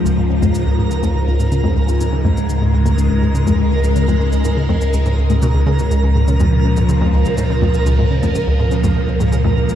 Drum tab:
SH |x--xx--xx--xx--x|x--xx--xx--xx--x|xx-xx--xxx-xx--x|x--xx--xx--xx--x|
T1 |---o----o----o--|--o----o----o---|-o----o----o----|----o----o----o-|

SH |x--xx--xx--xx--x|
T1 |---o----o----o--|